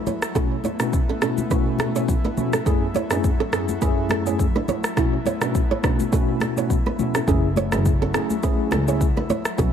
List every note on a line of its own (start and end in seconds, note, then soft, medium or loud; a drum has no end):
0.00 0.33 F#3 medium
0.00 0.33 A3 medium
0.00 9.73 E4 medium
0.07 0.19 E4 medium
0.07 0.18 C#5 medium
0.07 high conga medium
0.07 low conga medium
0.07 shaker soft
0.22 cross-stick medium
0.22 shaker medium
0.35 0.55 B2 medium
0.35 0.55 A3 medium
0.35 2.64 A3 medium
0.35 2.64 B3 medium
0.35 0.55 C#4 medium
0.35 0.55 E4 medium
0.35 0.48 E4 medium
0.35 0.55 F#4 loud
0.35 0.47 A4 medium
0.35 kick loud
0.35 low conga medium
0.35 shaker medium
0.64 0.76 E4 medium
0.64 0.76 C#5 medium
0.64 high conga medium
0.64 shaker soft
0.80 0.98 B2 medium
0.80 0.98 A3 medium
0.80 0.98 C#4 medium
0.80 0.90 D4 medium
0.80 0.98 E4 medium
0.80 0.98 F#4 medium
0.80 0.90 B4 medium
0.80 cross-stick medium
0.80 shaker medium
0.93 kick medium
0.93 shaker medium
1.09 1.19 C#4 medium
1.09 1.19 A4 medium
1.21 1.42 B2 medium
1.21 1.42 A3 medium
1.21 1.42 C#4 medium
1.21 1.34 C#4 medium
1.21 1.42 E4 medium
1.21 1.42 F#4 medium
1.21 1.34 A4 medium
1.21 cross-stick medium
1.21 shaker medium
1.38 high conga medium
1.38 shaker medium
1.50 1.91 B2 medium
1.50 1.91 A3 medium
1.50 1.92 C#4 medium
1.50 1.92 E4 medium
1.50 1.63 E4 medium
1.50 1.92 F#4 loud
1.50 1.63 B4 medium
1.50 kick loud
1.50 shaker medium
1.78 1.92 C#4 medium
1.78 1.91 A4 medium
1.78 cross-stick medium
1.78 high conga medium
1.78 shaker medium
1.95 2.13 B2 medium
1.95 2.13 A3 medium
1.95 2.13 C#4 medium
1.95 2.13 E4 medium
1.95 2.06 E4 medium
1.95 2.13 F#4 medium
1.95 2.05 C#5 medium
1.95 shaker medium
2.08 kick medium
2.08 low conga medium
2.08 shaker medium
2.25 2.35 D4 medium
2.25 2.34 B4 medium
2.25 high conga medium
2.37 2.57 B2 medium
2.37 2.57 A3 medium
2.37 2.57 C#4 medium
2.37 2.57 E4 medium
2.37 2.57 F#4 medium
2.37 high conga medium
2.37 low conga medium
2.37 shaker soft
2.53 2.63 C#4 medium
2.53 2.63 A4 medium
2.53 cross-stick medium
2.53 shaker medium
2.66 2.86 F#2 medium
2.66 4.95 F#3 medium
2.66 2.86 A3 medium
2.66 4.95 A3 medium
2.66 2.86 C#4 medium
2.66 2.78 C#4 medium
2.66 2.86 E4 medium
2.66 2.86 G#4 loud
2.66 2.78 A4 medium
2.66 kick loud
2.66 low conga medium
2.66 shaker medium
2.95 3.07 E4 medium
2.95 3.07 C#5 medium
2.95 high conga medium
2.95 shaker soft
3.11 3.29 F#2 medium
3.11 3.29 A3 medium
3.11 3.29 C#4 medium
3.11 3.21 D4 medium
3.11 3.29 E4 medium
3.11 3.29 G#4 medium
3.11 3.21 B4 medium
3.11 cross-stick medium
3.11 shaker medium
3.24 kick medium
3.24 shaker medium
3.40 3.50 C#4 medium
3.40 3.49 A4 medium
3.52 3.72 F#2 medium
3.52 3.73 A3 medium
3.52 3.73 C#4 medium
3.52 3.65 C#4 medium
3.52 3.73 E4 medium
3.52 3.73 G#4 medium
3.52 3.64 A4 medium
3.52 cross-stick medium
3.52 shaker medium
3.69 high conga medium
3.69 shaker medium
3.81 4.22 F#2 medium
3.81 4.22 A3 medium
3.81 4.22 C#4 medium
3.81 4.22 E4 medium
3.81 3.94 E4 medium
3.81 4.22 G#4 loud
3.81 3.93 B4 medium
3.81 kick loud
3.81 shaker medium
4.09 4.23 C#4 medium
4.09 4.22 A4 medium
4.09 cross-stick loud
4.09 high conga medium
4.09 shaker medium
4.26 4.44 F#2 medium
4.26 4.44 A3 medium
4.26 4.44 C#4 medium
4.26 4.44 E4 medium
4.26 4.37 E4 medium
4.26 4.44 G#4 medium
4.26 4.36 C#5 medium
4.26 shaker medium
4.39 kick medium
4.39 low conga medium
4.39 shaker medium
4.55 4.65 D4 medium
4.55 4.65 B4 medium
4.55 high conga medium
4.68 4.80 E4 medium
4.68 4.80 C#5 medium
4.68 high conga medium
4.68 low conga medium
4.68 shaker soft
4.84 cross-stick medium
4.84 shaker medium
4.96 5.17 B2 medium
4.96 5.17 A3 medium
4.96 7.25 A3 medium
4.96 7.25 B3 medium
4.96 5.17 C#4 medium
4.96 5.17 E4 medium
4.96 5.09 E4 medium
4.96 5.17 F#4 loud
4.96 5.09 A4 medium
4.96 kick loud
4.96 cross-stick medium
4.96 low conga medium
4.96 shaker medium
5.25 5.38 E4 medium
5.25 5.38 C#5 medium
5.25 high conga medium
5.25 shaker soft
5.41 5.59 B2 medium
5.41 5.59 A3 medium
5.41 5.59 C#4 medium
5.41 5.52 D4 soft
5.41 5.60 E4 medium
5.41 5.60 F#4 medium
5.41 5.51 B4 medium
5.41 cross-stick medium
5.41 shaker medium
5.55 kick medium
5.55 shaker medium
5.71 5.81 E4 medium
5.71 5.80 C#5 medium
5.83 6.03 B2 medium
5.83 6.03 A3 medium
5.83 6.03 C#4 medium
5.83 5.96 D4 medium
5.83 6.03 E4 medium
5.83 6.04 F#4 medium
5.83 5.95 B4 medium
5.83 kick loud
5.83 cross-stick medium
5.83 shaker medium
6.00 high conga medium
6.00 shaker medium
6.12 6.53 B2 medium
6.12 6.53 A3 medium
6.12 6.53 C#4 medium
6.12 6.53 E4 medium
6.12 6.25 E4 medium
6.12 6.53 F#4 loud
6.12 6.24 A4 medium
6.12 kick loud
6.12 shaker medium
6.40 6.54 C#4 medium
6.40 6.53 A4 medium
6.40 cross-stick loud
6.40 high conga medium
6.40 shaker medium
6.56 6.75 B2 medium
6.56 6.75 A3 medium
6.56 6.75 C#4 medium
6.56 6.75 E4 medium
6.56 6.67 E4 medium
6.56 6.75 F#4 medium
6.56 6.67 C#5 medium
6.56 shaker medium
6.70 kick medium
6.70 low conga medium
6.70 shaker medium
6.86 6.96 D4 medium
6.86 6.96 B4 medium
6.86 high conga medium
6.99 7.19 B2 medium
6.99 7.19 A3 medium
6.99 7.19 C#4 medium
6.99 7.19 E4 medium
6.99 7.19 F#4 medium
6.99 high conga medium
6.99 low conga medium
6.99 shaker soft
7.15 7.25 C#4 medium
7.15 7.25 A4 medium
7.15 cross-stick medium
7.15 shaker medium
7.27 7.63 F#1 loud
7.27 9.56 F#3 medium
7.27 7.47 A3 medium
7.27 9.56 A3 medium
7.27 7.48 C#4 medium
7.27 7.40 C#4 medium
7.27 7.48 E4 medium
7.27 7.48 G#4 loud
7.27 7.40 A4 medium
7.27 kick loud
7.27 low conga medium
7.27 shaker medium
7.56 7.69 E4 medium
7.56 7.68 C#5 medium
7.56 high conga medium
7.56 shaker soft
7.72 8.05 F#1 medium
7.72 7.90 A3 medium
7.72 7.90 C#4 medium
7.72 7.83 D4 medium
7.72 7.90 E4 medium
7.72 7.91 G#4 medium
7.72 7.82 B4 medium
7.72 cross-stick medium
7.72 shaker medium
7.86 kick medium
7.86 shaker medium
8.02 8.12 C#4 medium
8.02 8.11 A4 medium
8.14 8.34 A3 medium
8.14 8.34 C#4 medium
8.14 8.26 C#4 medium
8.14 8.34 E4 medium
8.14 8.34 G#4 medium
8.14 8.26 A4 medium
8.14 cross-stick medium
8.14 shaker medium
8.30 high conga medium
8.30 shaker medium
8.43 8.84 A3 medium
8.43 8.84 C#4 medium
8.43 8.84 E4 medium
8.43 8.55 E4 medium
8.43 8.84 G#4 loud
8.43 8.55 B4 medium
8.43 kick loud
8.43 shaker medium
8.71 9.07 C#2 medium
8.71 8.84 C#4 medium
8.71 8.84 A4 medium
8.71 cross-stick medium
8.71 high conga medium
8.71 shaker medium
8.87 9.06 A3 medium
8.87 9.06 C#4 medium
8.87 9.06 E4 medium
8.87 8.98 E4 medium
8.87 9.06 G#4 medium
8.87 8.97 C#5 medium
8.87 shaker medium
9.01 kick medium
9.01 low conga medium
9.01 shaker medium
9.17 9.27 D4 medium
9.17 9.26 B4 medium
9.17 high conga medium
9.30 9.42 E4 medium
9.30 9.41 C#5 medium
9.30 high conga medium
9.30 low conga medium
9.30 shaker soft
9.45 cross-stick medium
9.45 shaker medium
9.58 9.73 B1 loud
9.58 9.73 A3 medium
9.58 9.73 B3 medium
9.58 9.73 C#4 medium
9.58 9.73 E4 medium
9.58 9.71 E4 medium
9.58 9.73 F#4 medium
9.58 9.70 A4 medium
9.58 kick loud
9.58 low conga medium
9.58 shaker medium